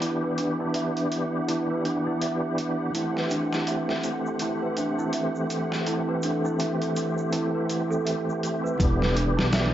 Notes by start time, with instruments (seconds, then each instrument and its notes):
Already playing: tonewheel organ E3 B3 D4 G4, celesta D4 B4 E5, ambient pad D4 G4 B4 E5, synth drone F#5
0.00 celesta E4, closed hi-hat
0.23 celesta B4
0.38 celesta D4, closed hi-hat
0.60 celesta E4
0.74 celesta E5, closed hi-hat
0.97 closed hi-hat
1.12 closed hi-hat
1.48 celesta E4, closed hi-hat
1.70 celesta B4
1.85 celesta D4, closed hi-hat
2.07 celesta E4
2.21 celesta E5, closed hi-hat
2.58 closed hi-hat
2.92 tonewheel organ E3 A3, ambient pad E3 C4 A4, celesta E4, closed hi-hat, shaker
2.96 tonewheel organ C4 G4
3.16 celesta B4, snare
3.30 celesta D4, closed hi-hat, shaker
3.53 celesta E4, snare, shaker
3.67 celesta E5, closed hi-hat, shaker
3.89 snare
4.04 closed hi-hat, shaker
4.26 shaker
4.39 celesta E4, closed hi-hat, shaker
4.62 celesta B4
4.77 celesta D4, closed hi-hat, shaker
4.99 celesta E4, shaker
5.13 celesta E5, closed hi-hat, shaker
5.35 shaker
5.50 closed hi-hat, shaker
5.72 snare, shaker
5.87 celesta E4, closed hi-hat, shaker
6.09 celesta B4
6.23 celesta D4, closed hi-hat, shaker
6.45 celesta E4, shaker
6.59 celesta E5, closed hi-hat, shaker
6.82 closed hi-hat, shaker
6.96 closed hi-hat, shaker
7.18 shaker
7.32 celesta E4, closed hi-hat, shaker
7.55 celesta B4
7.69 celesta E4, closed hi-hat, shaker
7.91 celesta A4, shaker
8.05 celesta E5, closed hi-hat, shaker
8.29 shaker
8.43 closed hi-hat, shaker
8.64 celesta B4, shaker
8.78 upright bass E1, tonewheel organ E3 B3, celesta E4, ambient pad E4 B4 D5, kick, closed hi-hat
8.83 tonewheel organ D4 G4
9.01 celesta B4, snare
9.15 celesta D4, closed hi-hat
9.37 upright bass B1, celesta E4, snare
9.53 celesta E5, snare, closed hi-hat